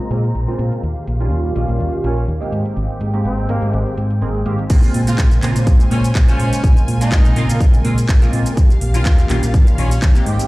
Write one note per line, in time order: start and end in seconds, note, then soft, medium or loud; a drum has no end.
0.00 0.79 C5 medium
0.00 0.81 A#5 medium
0.10 0.30 A#2 medium
0.10 0.23 C#3 medium
0.10 0.23 G#3 medium
0.10 0.23 A#3 medium
0.10 0.23 C4 medium
0.10 0.23 F4 medium
0.10 closed hi-hat medium
0.24 closed hi-hat soft
0.35 0.45 A#1 loud
0.35 closed hi-hat soft
0.48 0.82 C#3 medium
0.48 0.82 G#3 medium
0.48 0.82 A#3 medium
0.48 0.82 C4 medium
0.48 0.82 F4 medium
0.48 closed hi-hat soft
0.59 0.69 A#2 medium
0.59 closed hi-hat medium
0.72 closed hi-hat soft
0.83 0.94 D#2 medium
0.83 2.51 G4 medium
0.83 2.51 F5 medium
0.83 closed hi-hat soft
0.96 closed hi-hat soft
1.07 1.31 A#1 medium
1.07 closed hi-hat medium
1.20 1.53 D#3 medium
1.20 1.53 G3 medium
1.20 1.53 A#3 medium
1.20 1.53 C#4 medium
1.20 1.40 F4 medium
1.20 1.53 F4 medium
1.20 closed hi-hat soft
1.31 1.51 D#2 medium
1.31 closed hi-hat soft
1.45 closed hi-hat soft
1.55 1.66 A#1 medium
1.55 2.01 D#3 medium
1.55 2.01 G3 medium
1.55 2.01 A#3 medium
1.55 2.02 C#4 medium
1.55 2.02 F4 loud
1.55 closed hi-hat medium
1.68 1.78 A#1 loud
1.68 closed hi-hat soft
1.80 1.90 D#2 loud
1.80 closed hi-hat medium
1.93 closed hi-hat soft
2.04 2.24 A#1 medium
2.04 2.16 D#3 medium
2.04 2.16 G3 medium
2.04 2.16 A#3 medium
2.04 2.25 C#4 medium
2.04 2.16 C#4 medium
2.04 2.16 F4 medium
2.04 closed hi-hat medium
2.17 closed hi-hat soft
2.28 2.39 D#2 loud
2.28 closed hi-hat medium
2.40 3.10 D#3 medium
2.40 3.11 G#3 medium
2.40 3.11 A#3 medium
2.40 3.11 C4 medium
2.40 3.11 G4 medium
2.40 closed hi-hat soft
2.52 2.63 G#2 medium
2.52 4.68 G#3 medium
2.52 4.68 C4 medium
2.52 4.68 G5 medium
2.52 closed hi-hat medium
2.65 closed hi-hat soft
2.76 2.87 G#1 medium
2.76 closed hi-hat medium
2.90 closed hi-hat soft
3.01 3.26 G#2 medium
3.01 closed hi-hat medium
3.13 3.46 D#3 medium
3.13 3.46 G#3 medium
3.13 3.46 A#3 medium
3.13 3.47 C4 medium
3.13 3.47 G4 medium
3.13 closed hi-hat medium
3.25 3.45 G#1 medium
3.25 3.46 C4 medium
3.25 closed hi-hat medium
3.38 closed hi-hat soft
3.49 3.60 G#2 medium
3.49 3.95 D#3 medium
3.49 3.95 G#3 medium
3.49 3.95 A#3 medium
3.49 3.86 A#3 medium
3.49 3.95 C4 medium
3.49 3.95 G4 loud
3.49 closed hi-hat loud
3.62 3.71 G#2 medium
3.62 closed hi-hat medium
3.73 3.84 G#1 loud
3.73 closed hi-hat medium
3.86 closed hi-hat soft
3.97 4.23 G#2 medium
3.97 closed hi-hat medium
4.10 closed hi-hat medium
4.21 4.42 G#1 medium
4.21 4.40 D#3 medium
4.21 4.40 G#3 medium
4.21 4.40 A#3 medium
4.21 4.40 C4 medium
4.21 4.40 G#4 medium
4.21 closed hi-hat medium
4.35 closed hi-hat soft
4.46 4.56 G#2 loud
4.46 4.64 D#3 medium
4.46 4.64 G#3 medium
4.46 4.64 A#3 medium
4.46 4.64 C4 medium
4.46 4.65 G4 medium
4.46 closed hi-hat loud
4.59 closed hi-hat medium
4.70 4.81 A#1 loud
4.70 5.02 C#3 loud
4.70 5.02 G#3 medium
4.70 5.02 A#3 medium
4.70 5.02 C4 medium
4.70 5.02 F4 loud
4.70 6.62 C5 medium
4.70 8.53 G#5 loud
4.70 kick loud
4.70 closed hi-hat medium
4.70 crash loud
4.70 shaker medium
4.83 closed hi-hat soft
4.83 shaker soft
4.94 5.20 A#2 medium
4.94 open hi-hat loud
5.07 5.40 C#3 medium
5.07 5.40 G#3 medium
5.07 5.40 A#3 medium
5.07 5.40 C4 medium
5.07 5.28 F4 medium
5.07 5.40 F4 medium
5.07 closed hi-hat medium
5.07 shaker medium
5.18 5.38 A#1 medium
5.18 kick loud
5.18 clap loud
5.18 closed hi-hat medium
5.18 shaker medium
5.31 closed hi-hat soft
5.31 shaker soft
5.42 5.53 A#2 medium
5.42 5.88 C#3 loud
5.42 5.89 G#3 medium
5.42 5.89 A#3 medium
5.42 5.89 C4 medium
5.42 5.89 F4 loud
5.42 clap medium
5.42 open hi-hat medium
5.56 5.65 A#2 loud
5.56 closed hi-hat medium
5.56 shaker medium
5.67 5.78 A#1 loud
5.67 kick loud
5.67 closed hi-hat medium
5.67 shaker medium
5.80 closed hi-hat soft
5.80 shaker soft
5.90 6.11 A#2 medium
5.90 6.03 C#3 medium
5.90 6.03 G#3 medium
5.90 6.03 A#3 medium
5.90 6.03 C4 medium
5.90 6.12 C#4 medium
5.90 6.03 F4 medium
5.90 open hi-hat loud
6.04 closed hi-hat medium
6.04 shaker medium
6.15 6.26 A#1 loud
6.15 kick loud
6.15 clap loud
6.15 closed hi-hat medium
6.15 shaker medium
6.27 6.97 C#3 medium
6.27 6.97 G#3 medium
6.27 6.98 A#3 medium
6.27 6.77 C#4 loud
6.27 6.98 F4 loud
6.27 6.98 C5 medium
6.27 closed hi-hat soft
6.27 shaker soft
6.40 6.50 A#2 medium
6.40 open hi-hat medium
6.53 closed hi-hat medium
6.53 shaker medium
6.64 6.74 A#1 loud
6.64 8.55 A#4 medium
6.64 kick loud
6.64 closed hi-hat medium
6.64 shaker medium
6.77 closed hi-hat soft
6.77 shaker soft
6.88 7.14 A#2 medium
6.88 open hi-hat loud
7.01 7.33 C#3 medium
7.01 7.34 G#3 medium
7.01 7.34 A#3 medium
7.01 7.34 C4 medium
7.01 7.68 D#4 loud
7.01 7.34 F4 medium
7.01 closed hi-hat medium
7.01 shaker medium
7.12 7.32 A#1 medium
7.12 kick loud
7.12 clap loud
7.12 closed hi-hat medium
7.12 shaker medium
7.25 closed hi-hat soft
7.25 shaker soft
7.36 7.47 A#2 loud
7.36 7.82 C#3 loud
7.36 7.82 G#3 medium
7.36 7.82 A#3 medium
7.36 7.82 C4 medium
7.36 7.82 F4 loud
7.36 open hi-hat loud
7.49 7.58 A#2 loud
7.49 closed hi-hat medium
7.49 shaker medium
7.61 7.71 A#1 loud
7.61 kick loud
7.61 closed hi-hat medium
7.61 shaker medium
7.74 closed hi-hat soft
7.74 shaker soft
7.84 8.04 A#2 medium
7.84 7.96 C#3 medium
7.84 7.97 G#3 medium
7.84 7.97 A#3 medium
7.84 7.97 C4 medium
7.84 7.97 F4 medium
7.84 open hi-hat loud
7.98 closed hi-hat medium
7.98 shaker medium
8.09 8.19 A#1 loud
8.09 kick loud
8.09 clap loud
8.09 closed hi-hat medium
8.09 shaker medium
8.21 8.56 C#3 medium
8.21 8.56 G#3 medium
8.21 8.56 A#3 medium
8.21 8.56 C4 medium
8.21 8.56 F4 medium
8.21 closed hi-hat soft
8.21 shaker soft
8.33 8.43 A#2 medium
8.33 open hi-hat loud
8.46 closed hi-hat medium
8.46 shaker medium
8.57 8.68 D#2 loud
8.57 10.25 G4 medium
8.57 10.25 F5 medium
8.57 kick loud
8.57 closed hi-hat soft
8.57 shaker medium
8.70 closed hi-hat soft
8.70 shaker soft
8.81 9.06 A#1 medium
8.81 open hi-hat loud
8.94 9.27 D#3 medium
8.94 9.27 G3 medium
8.94 9.27 A#3 medium
8.94 9.27 C#4 medium
8.94 9.15 F4 medium
8.94 9.27 F4 medium
8.94 closed hi-hat medium
8.94 shaker medium
9.05 9.26 D#2 medium
9.05 kick loud
9.05 clap loud
9.05 closed hi-hat medium
9.05 shaker medium
9.19 closed hi-hat soft
9.19 shaker soft
9.29 9.40 A#1 medium
9.29 9.75 D#3 loud
9.29 9.75 G3 medium
9.29 9.76 A#3 medium
9.29 9.76 C#4 medium
9.29 9.76 F4 loud
9.29 clap medium
9.29 open hi-hat medium
9.43 9.52 A#1 loud
9.43 closed hi-hat medium
9.43 shaker medium
9.54 9.65 D#2 loud
9.54 kick loud
9.54 closed hi-hat medium
9.54 shaker medium
9.67 closed hi-hat soft
9.67 shaker soft
9.78 9.98 A#1 medium
9.78 9.90 D#3 medium
9.78 9.90 G3 medium
9.78 9.90 A#3 medium
9.78 9.99 C#4 medium
9.78 9.90 C#4 medium
9.78 9.90 F4 medium
9.78 open hi-hat loud
9.91 closed hi-hat medium
9.91 shaker medium
10.02 10.13 D#2 loud
10.02 kick loud
10.02 clap loud
10.02 closed hi-hat soft
10.02 shaker medium
10.15 10.47 D#3 medium
10.15 10.47 G#3 medium
10.15 10.47 A#3 medium
10.15 10.47 C4 medium
10.15 10.47 G4 loud
10.15 closed hi-hat soft
10.15 shaker soft
10.26 10.37 G#2 medium
10.26 10.47 G#3 medium
10.26 10.47 C4 medium
10.26 10.47 G5 medium
10.26 open hi-hat loud
10.39 closed hi-hat medium
10.39 shaker medium